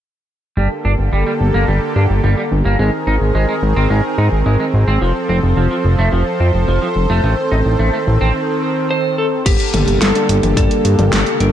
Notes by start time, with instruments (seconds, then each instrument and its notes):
0.57 analog synth bass G1, supersaw synth D3 A#3 G4 A4, clean electric guitar G3
0.85 analog synth bass G1, clean electric guitar D4
0.99 analog synth bass G1
1.13 analog synth bass G1, clean electric guitar G3
1.27 clean electric guitar G3
1.40 analog synth bass G1
1.54 analog synth bass G1, clean electric guitar A#3
1.68 analog synth bass G1, clean electric guitar G3
1.96 analog synth bass G2, clean electric guitar D4
2.10 analog synth bass G1
2.24 analog synth bass G1, clean electric guitar G3
2.38 clean electric guitar G3
2.52 analog synth bass G1
2.65 analog synth bass G1, clean electric guitar A#3
2.79 analog synth bass G#1, supersaw synth D#3 C4 G#4 A#4, clean electric guitar G#3
3.07 analog synth bass G#1, clean electric guitar D#4
3.21 analog synth bass G#1
3.35 analog synth bass G#1, clean electric guitar G#3
3.49 clean electric guitar G#3
3.63 analog synth bass G#1
3.76 analog synth bass G#1, clean electric guitar C4
3.90 analog synth bass G#1, clean electric guitar G#3
4.18 analog synth bass G#2, clean electric guitar D#4
4.32 analog synth bass G#1
4.46 analog synth bass G#1, clean electric guitar G#3
4.60 clean electric guitar G#3
4.74 analog synth bass G#1
4.87 analog synth bass G#1, clean electric guitar C4
5.01 analog synth bass F1, clean electric guitar F3, supersaw synth F3 A4 C5
5.29 analog synth bass F1, clean electric guitar C4
5.43 analog synth bass F1
5.57 analog synth bass F1, clean electric guitar F3
5.71 clean electric guitar F3
5.85 analog synth bass F1
5.99 analog synth bass F1, clean electric guitar A3
6.12 analog synth bass F1, clean electric guitar F3
6.40 analog synth bass F2, clean electric guitar C4
6.54 analog synth bass F1
6.68 analog synth bass F1, clean electric guitar F3
6.82 clean electric guitar F3
6.96 analog synth bass F1
7.10 analog synth bass F1, clean electric guitar A3
7.24 analog synth bass A1, supersaw synth D#3 C4, clean electric guitar A3
7.51 analog synth bass A1, clean electric guitar D#4
7.65 analog synth bass A1
7.79 analog synth bass A1, clean electric guitar A3
7.93 clean electric guitar A3
8.07 analog synth bass A1
8.21 analog synth bass A1, clean electric guitar C4
8.91 lead electric guitar C5
9.18 lead electric guitar A4
9.46 analog synth bass G1, supersaw synth D3 A#3 G4 A4, lead electric guitar G4, kick, closed hi-hat, crash
9.60 closed hi-hat
9.74 analog synth bass G1, tine electric piano G3 A#3 D4 A4, closed hi-hat, mid tom
9.88 analog synth bass G1, closed hi-hat
10.01 analog synth bass G1, lead electric guitar A4, snare, closed hi-hat
10.15 tine electric piano G3 A#3 D4 A4, closed hi-hat
10.29 analog synth bass G1, closed hi-hat
10.43 analog synth bass G1, closed hi-hat, mid tom
10.57 analog synth bass G1, tine electric piano G3 A#3 D4 A4, lead electric guitar A4, kick, closed hi-hat
10.71 closed hi-hat
10.85 analog synth bass G2, closed hi-hat
10.99 analog synth bass G1, tine electric piano G3 A#3 D4 A#4, closed hi-hat, mid tom
11.13 analog synth bass G1, lead electric guitar A4, snare, closed hi-hat
11.27 closed hi-hat
11.40 analog synth bass G1, tine electric piano G3 A#3 D4 A4, lead electric guitar A#4, closed hi-hat